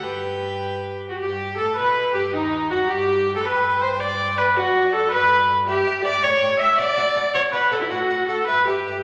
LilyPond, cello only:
\new Staff \with { instrumentName = "Cello" } { \clef bass \time 6/8 \key g \major \tempo 4. = 107 g,2~ g,8 r8 | g,4 a,8 b,4 g,8 | dis,4 fis,8 g,4~ g,16 a,16 | g,2. |
fis,4. g,4. | \key b \minor g,8 g,8 g,8 a,8 a,8 a,8 | b,8 b,8 b,8 b,8 b,8 b,8 | a,8 a,8 a,8 g,8 g,8 g,8 | }